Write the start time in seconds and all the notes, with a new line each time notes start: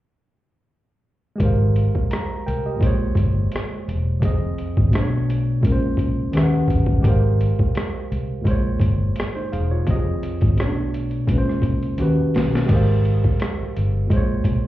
1.36 G#3 G4
1.40 G#1 A#4 C5, kick, closed hi-hat
1.45 F5
1.76 closed hi-hat
1.95 muted fingered electric bass stroke, kick
2.11 A#5, cross-stick, closed hi-hat
2.46 C2 A#4 G5, closed hi-hat
2.66 G4 D#5
2.77 A#2 G#3
2.81 A#1 C5, kick, closed hi-hat
2.86 C#5
3.15 G1, kick, closed hi-hat
3.52 cross-stick, closed hi-hat
3.88 E1, closed hi-hat
4.20 F1 F3 C4 G#4, kick, closed hi-hat
4.25 D#5
4.58 closed hi-hat
4.77 G#1, kick
4.91 B2 A3 D4, closed hi-hat
4.95 B1 C5, cross-stick
5.02 C#5
5.30 closed hi-hat
5.61 A#1 A#2 G#3 C#4, kick, closed hi-hat
5.66 A#4
5.72 C5
5.97 C2, kick, closed hi-hat
6.32 D#2 D#3 C#4 G4 B4, closed hi-hat
6.37 E5, cross-stick
6.43 F#5
6.68 G1, kick, closed hi-hat
6.86 kick
7.00 G#3 G4
7.04 G#1 A#4 C5, kick, closed hi-hat
7.10 F5
7.41 closed hi-hat
7.59 muted fingered electric bass stroke, kick
7.75 cross-stick, closed hi-hat
8.12 C2, closed hi-hat
8.41 A#2 G#3, kick
8.46 A#1 C5, closed hi-hat
8.51 C#5
8.80 G1, kick, closed hi-hat
9.16 cross-stick, closed hi-hat
9.35 D#4 C5
9.52 E1 G#4 F5, closed hi-hat
9.71 F4 C#5
9.86 F1 F3 C4 G4, kick, closed hi-hat
9.91 D#5
9.96 G#4
10.23 closed hi-hat
10.41 G#1, kick, closed hi-hat
10.57 B1 B2 A3 C#4, cross-stick, closed hi-hat
10.61 C#5
10.66 D4
10.94 closed hi-hat
11.11 closed hi-hat
11.27 A#1 A#2 G#3 C#4, kick, closed hi-hat
11.32 B4
11.38 C5
11.49 muted fingered electric bass stroke, cross-stick
11.62 C2, kick, closed hi-hat
11.83 closed hi-hat
11.97 D#2 D#3 C#4 F#4 G4, closed hi-hat
12.02 B4
12.19 muted fingered electric bass stroke
12.35 B1, snare, closed hi-hat
12.52 snare, closed hi-hat
12.65 G#3 G4, kick, closed hi-hat, crash
12.70 G#1 A#4 C5
12.75 F5
13.05 closed hi-hat
13.24 kick
13.40 cross-stick, closed hi-hat
13.61 muted fingered electric bass stroke
13.76 G1, closed hi-hat
14.07 A#1 A#2 G#3, kick
14.11 C5, closed hi-hat
14.17 C#5
14.44 C2, kick, closed hi-hat